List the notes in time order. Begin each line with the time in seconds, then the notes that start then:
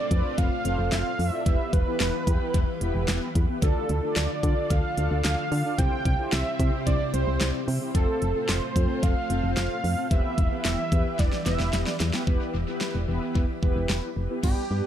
Already playing: A3 C4 F4 D5
0.11 F2 C4 F4 A4 B4, kick, closed hi-hat
0.38 F1 F5, kick, closed hi-hat
0.65 F1 C4 F4 A4 C5, closed hi-hat
0.79 F1
0.92 F1 F5, snare, clap, closed hi-hat
1.19 F2, open hi-hat
1.29 C4 F4 A4 E5
1.33 D5
1.46 E1 E3 B3 E4 G4 B4 E5, kick, closed hi-hat
1.73 E1 B4, kick, closed hi-hat
1.87 B3 E4 G4 B4
2.00 E1, snare, clap, closed hi-hat
2.27 E2 B3 E4 G4 B4, kick, closed hi-hat
2.54 E1, kick, closed hi-hat
2.81 E1 B3 E4 G4 B4, closed hi-hat
2.95 E1
3.08 E1, snare, clap, closed hi-hat
3.35 E2, kick, closed hi-hat
3.49 B3 E4 G4 B4
3.62 D2 D3 D4 F4 A4 D5, kick, closed hi-hat
3.89 D2, closed hi-hat
4.03 D4 F4 A4 D5
4.16 D2 D5, snare, clap, closed hi-hat
4.43 D3 D4 F4 A4 D5, kick, closed hi-hat
4.70 D2 F5, kick, closed hi-hat
4.97 D2 D4 F4 A4 D5, closed hi-hat
5.11 D2
5.24 D2 F5, snare, clap, closed hi-hat
5.52 D3, open hi-hat
5.65 D4 F4 A4 D5
5.78 C2 C3 C4 E4 G4 C5 G5, kick, closed hi-hat
6.05 C2, kick, closed hi-hat
6.19 C4 E4 G4 C5
6.32 C2 E5, snare, clap, closed hi-hat
6.60 C3 C4 E4 G4 C5, kick, closed hi-hat
6.87 C2 D5, kick, closed hi-hat
7.14 C2 C4 E4 G4 C5, closed hi-hat
7.27 C2
7.41 C2, snare, clap, closed hi-hat
7.68 C3, open hi-hat
7.81 C4 E4 G4 C5
7.95 F1 A3 C4 F4 A4 C5, kick, closed hi-hat
8.22 F1, closed hi-hat
8.35 C4 F4 A4 C5
8.49 F1 C5, snare, clap, closed hi-hat
8.76 F2 C4 F4 A4 C5, kick, closed hi-hat
9.03 F1 F5, kick, closed hi-hat
9.30 F1 C4 F4 A4 C5, closed hi-hat
9.44 F1
9.57 F1 F5, snare, clap, closed hi-hat
9.84 F2, open hi-hat
9.97 C4 F4 A4 C5
10.11 E1 E3 B3 E4 G4 B4 E5, kick, closed hi-hat
10.38 E1, kick, closed hi-hat
10.52 B3 E4 G4 B4
10.65 E1 E5, snare, clap, closed hi-hat
10.92 E2 B3 E4 G4 B4, kick, closed hi-hat
11.19 E1 D5, kick, snare, closed hi-hat
11.33 snare
11.46 E1 B3 E4 G4 B4 E5, snare, closed hi-hat
11.60 E1, snare
11.73 E1, snare, closed hi-hat
11.87 snare
12.00 E2, snare, closed hi-hat
12.14 B3 E4 G4 B4, snare
12.27 E1 E3 B3 E4 G4 B4, kick
12.54 E1
12.68 B3 E4 G4 B4
12.81 snare
12.95 E1
13.08 E1 B3 E4 G4 B4
13.35 E1, kick
13.62 E1 B3 E4 G4 B4, kick
13.76 E1
13.89 E1, snare
14.16 F1
14.30 B3 E4 G4 B4
14.43 G1 B3 D4 G4 B4, kick, crash
14.71 G2 B3 D4 G4 B4